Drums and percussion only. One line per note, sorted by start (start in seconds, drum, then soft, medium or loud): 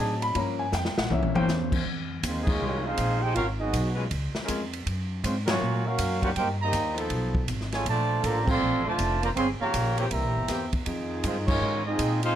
0.22 ride medium
0.35 kick soft
0.35 ride medium
0.72 snare medium
0.72 hi-hat pedal medium
0.85 snare medium
0.98 snare loud
1.10 high tom medium
1.23 high tom medium
1.35 high tom loud
1.48 snare medium
1.48 hi-hat pedal medium
1.72 kick medium
1.72 crash loud
1.86 kick soft
2.23 kick soft
2.23 hi-hat pedal medium
2.23 ride medium
2.47 kick loud
2.47 crash medium
2.97 kick soft
2.97 hi-hat pedal medium
2.97 ride medium
3.36 kick soft
3.36 ride medium
3.73 kick soft
3.73 hi-hat pedal medium
3.73 ride medium
4.11 kick soft
4.11 ride medium
4.35 snare medium
4.48 kick soft
4.48 hi-hat pedal medium
4.48 ride medium
4.73 ride medium
4.86 kick soft
4.86 ride medium
5.24 kick soft
5.24 hi-hat pedal medium
5.24 ride medium
5.48 snare loud
5.48 ride medium
5.98 kick soft
5.98 hi-hat pedal medium
5.98 ride medium
6.23 kick medium
6.23 ride medium
6.36 kick soft
6.36 ride medium
6.73 kick soft
6.73 hi-hat pedal medium
6.73 ride medium
6.98 ride medium
7.10 kick soft
7.10 ride medium
7.35 kick medium
7.48 kick soft
7.48 hi-hat pedal soft
7.48 ride medium
7.61 snare soft
7.72 snare soft
7.72 ride medium
7.86 kick soft
7.86 ride medium
8.24 kick soft
8.24 hi-hat pedal medium
8.24 ride medium
8.48 kick loud
8.48 crash medium
8.99 kick soft
8.99 hi-hat pedal medium
8.99 ride medium
9.23 ride medium
9.36 kick soft
9.36 ride medium
9.74 kick soft
9.74 hi-hat pedal medium
9.74 ride medium
9.98 ride medium
10.11 kick soft
10.11 ride medium
10.48 kick soft
10.48 snare soft
10.48 hi-hat pedal medium
10.48 ride medium
10.73 kick medium
10.73 ride medium
10.86 kick soft
10.86 ride medium
11.24 kick soft
11.24 hi-hat pedal medium
11.24 ride medium
11.48 kick loud
11.48 crash medium
11.99 kick soft
11.99 hi-hat pedal medium
11.99 ride medium
12.23 ride medium